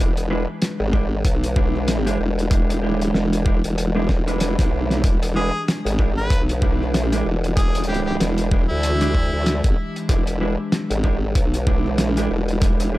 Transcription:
Already playing: E3 G#3 D4
0.00 E1 B4
0.17 cross-stick, closed hi-hat
0.30 G#3 D4 E4 B4
0.62 snare, closed hi-hat
0.80 G#1
0.93 G#3 D4 E4 G4, kick, cross-stick
1.24 B1, kick, closed hi-hat
1.44 closed hi-hat
1.56 G#3 D4 E4 G4, kick
1.75 cross-stick
1.88 snare, closed hi-hat
2.06 G#3 D4 E4 G4, closed hi-hat
2.19 E1
2.39 closed hi-hat
2.51 G#3 D4 E4 G4, kick, closed hi-hat
2.70 cross-stick, closed hi-hat
2.83 D#1 G#3 D4 E4 G4
3.01 closed hi-hat
3.14 E1, snare
3.33 closed hi-hat
3.46 G#3 D4 E4 G4, kick
3.64 E1, closed hi-hat
3.78 closed hi-hat
3.95 G#3 D4 E4 G4
4.09 kick, snare
4.27 G#3 D4 E4 B4, closed hi-hat
4.40 snare, closed hi-hat
4.58 B1 G#3 D4 E4 G4, kick, snare, closed hi-hat
4.90 snare, closed hi-hat
5.04 E1 G#3 D4 E4 G4, kick, closed hi-hat
5.23 cross-stick, closed hi-hat
5.25 cross-stick
5.32 G#3 D4, cross-stick
5.36 E4 G#4 B4
5.68 snare, closed hi-hat
5.85 G#1, closed hi-hat
5.99 G#3 D4 E4 G4, kick, cross-stick
6.17 B4
6.30 B1, kick, closed hi-hat
6.49 closed hi-hat
6.62 G#3 D4 E4 G4, kick
6.82 cross-stick
6.94 A#1, snare, closed hi-hat
7.12 G#3 D4 E4 G4, closed hi-hat
7.25 E1
7.44 closed hi-hat
7.57 G#3 D4 E4 G4 G#4, kick, closed hi-hat
7.75 cross-stick, closed hi-hat
7.84 closed hi-hat
7.88 G#3 D4 E4 G4
7.94 closed hi-hat
8.06 G4
8.20 E1, snare, closed hi-hat
8.38 closed hi-hat
8.51 G#3 D4 E4 G4, kick
8.69 D2 E4
8.83 closed hi-hat
9.01 G#3 D4 E4 G4, closed hi-hat
9.15 kick
9.33 D2
9.46 snare, closed hi-hat
9.64 G#1, kick, closed hi-hat
9.96 closed hi-hat
10.09 E1 G#3 D4 E4 G4, kick, closed hi-hat
10.27 cross-stick, closed hi-hat
10.41 G#3 D4 E4 B4
10.72 snare, closed hi-hat
10.90 G#1, closed hi-hat
11.04 G#3 D4 E4 G4, kick, cross-stick
11.35 B1, kick, closed hi-hat
11.54 closed hi-hat
11.67 G#3 D4 E4 G4, kick
11.85 cross-stick
11.98 A#1, snare, closed hi-hat
12.17 G#3 D4 E4 G4, closed hi-hat
12.30 E1
12.48 closed hi-hat
12.62 G#3 D4 E4 G4, kick, closed hi-hat
12.80 cross-stick, closed hi-hat
12.93 G#3 D4 E4 G4

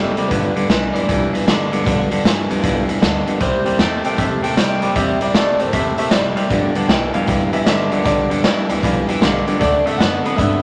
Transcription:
Already playing: F#1 C3 G3 A#3 E4 G4 A4
0.15 C3 G3 A#3 E4 G4, muted upright bass stroke, closed hi-hat
0.28 G1 G2 D3 F3 B3 F4 B4, kick, closed hi-hat
0.32 G4
0.55 G2 D3 F3 B3 F4 G4, muted upright bass stroke, closed hi-hat
0.69 B1 G2 E3 F3 B3 F4 B4, snare, closed hi-hat
0.93 G2 E3 F3 B3 F4 G4 D5, muted upright bass stroke, closed hi-hat
1.08 C2 G2 D3 E3 F3 B3 F4 G4, kick, closed hi-hat
1.33 G2 E3 F3 B3 F4 G4, muted upright bass stroke, closed hi-hat
1.46 G1 G2 D3 F3 B3 F4 G4, snare, closed hi-hat
1.71 D2 G2 D3 F3 B3 F4 G4, closed hi-hat
1.83 B1 G2 D3 F3 B3 F4 G4, kick, closed hi-hat
2.09 G2 D3 F3 B3 F4 G4, muted upright bass stroke, closed hi-hat
2.23 G1 G2 E3 F3 F4 G4, snare, closed hi-hat
2.48 D2 G2 E3 F3 B3 F4 G4, closed hi-hat
2.61 B1 G2 D3 E3 F3 B3 F4 G4, kick, closed hi-hat
2.86 G2 E3 F3 B3 F4 G4, muted upright bass stroke, closed hi-hat
3.00 D2 G2 D3 F3 B3 F4, snare, closed hi-hat
3.26 G2 D3 F3 B3 F4 G4, muted upright bass stroke, closed hi-hat
3.40 C2 C3 G3 A#3 E4 G4 C5, kick, closed hi-hat
3.64 C3 G3 A#3 E4 G4, muted upright bass stroke, closed hi-hat
3.77 E2 C3 G3 A3 A#3 E4 G4 G5, snare, closed hi-hat
4.04 C3 A3 A#3 E4 G4 G5, muted upright bass stroke, closed hi-hat
4.17 F2 C3 G3 A3 A#3 E4 G4 E5, kick, closed hi-hat
4.42 C3 A3 A#3 E4 G4 G5, muted upright bass stroke, closed hi-hat
4.55 C2 C3 G3 A#3 E4 G4, snare, closed hi-hat
4.81 G2 C3 G3 A#3 E4 G4, closed hi-hat
4.95 E2 C3 G3 A#3 E4 G4 E5, kick, closed hi-hat
5.20 C3 G3 A#3 E4 G4 D5, muted upright bass stroke, closed hi-hat
5.34 C2 C3 G3 A3 A#3 E4 G4 D5, snare, closed hi-hat
5.59 G2 C3 A3 A#3 E4 G4 C5, closed hi-hat
5.73 E2 C3 G3 A3 A#3 E4 G4 E5, kick, closed hi-hat
5.98 C3 A3 A#3 E4 G4 E5, muted upright bass stroke, closed hi-hat
6.11 F1 C3 G3 A#3 E4 G4 D5, snare, closed hi-hat
6.36 C3 G3 A#3 E4 G4 E5, muted upright bass stroke, closed hi-hat
6.49 G1 G2 D3 F3 B3 F4 G4 B4 D5 G5, kick, closed hi-hat
6.74 G2 D3 F3 B3 F4 G4 B4 D5 G5, muted upright bass stroke, closed hi-hat
6.88 B1 G2 E3 F3 F4 B4 D5 G5, snare, closed hi-hat
7.12 G2 E3 F3 B3 F4 G4 B4 D5 F5 G5, muted upright bass stroke, closed hi-hat
7.26 C2 G2 D3 E3 F3 B3 F4 G4 B4 D5 G5, kick, closed hi-hat
7.51 G2 E3 F3 B3 F4 G4 B4 D5 E5 G5, muted upright bass stroke, closed hi-hat
7.65 G1 G2 D3 F4 B4 D5 E5 G5, snare, closed hi-hat
7.90 D2 G2 D3 F3 B3 F4 G4 B4 D5 E5, closed hi-hat
8.04 B1 G2 D3 F3 B3 F4 G4 B4 D5 G5, kick, closed hi-hat
8.29 G2 D3 F3 B3 F4 G4 B4 D5 G5, muted upright bass stroke, closed hi-hat
8.42 G1 G2 E3 F3 B3 F4 G4 B4 D5 G5, snare, closed hi-hat
8.69 D2 G2 E3 F3 B3 F4 G4 B4 D5 G5, closed hi-hat
8.83 B1 G2 D3 E3 F3 B3 F4 G4 B4 D5 F5, kick, closed hi-hat
9.07 G2 E3 F3 B3 F4 G4 B4 D5 G5, muted upright bass stroke, closed hi-hat
9.21 B1 G2 D3 F3 B3 F4 G4 B4 D5 F5, snare, closed hi-hat
9.45 G2 D3 F3 B3 F4 G4 B4 D5 G5, muted upright bass stroke, closed hi-hat
9.59 D2 D3 F#3 A3 C4 D4 A4 D5 F#5, kick, closed hi-hat
9.84 D3 A3 C4 D4 A4 D5 E5 F#5, muted upright bass stroke, closed hi-hat
9.98 F#2 D3 F#3 B3 C4 D4 A4 D5 F#5, snare, closed hi-hat
10.22 D3 C4 D4 A4 D5 A5, muted upright bass stroke, closed hi-hat
10.26 B3
10.36 G2 D3 F#3 B3 C4 D4 A4 D5 E5 F#5, kick, closed hi-hat

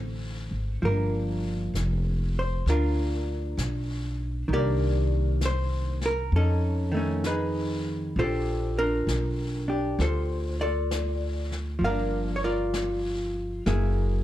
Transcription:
Already playing: A1 D3 A3 C4 F#4
0.51 G#1
0.82 G1 F3 A#3 A#4, brush sweep
0.87 D4
1.74 F1, brush sweep, snare, hi-hat pedal
2.39 C5
2.66 D2 D4 F4 A#4, brush sweep, snare
3.57 B1, brush sweep, snare, hi-hat pedal
4.48 C2 D#3, brush sweep
4.53 A#3 G4 A#4 D5
4.59 D4
5.41 brush sweep, snare, hi-hat pedal
5.46 C5
6.01 snare
6.06 A#4
6.32 F2, brush sweep
6.36 C#4 D#4 A4
6.92 D#3 A3
6.97 C#4
7.24 D#4 G#4 B4, brush sweep, snare, hi-hat pedal
8.16 A#1 D4 F4 C5, brush sweep
8.20 G4 A4
8.79 D4 F4 A#4
9.07 B1, brush sweep, snare, hi-hat pedal
9.68 D4 G4
9.99 D2 F4 A4 C5, brush sweep, snare
10.61 F4 A4 D5
10.91 brush sweep, snare, hi-hat pedal
11.52 snare
11.79 G1 F3, brush sweep
11.84 A#3 A#4 D5 F5
11.90 D4
12.36 C#5
12.44 F4 A#4 D5
12.74 brush sweep, snare, hi-hat pedal
13.66 F#1 F#3 A#3 E4 G#4, brush sweep, snare

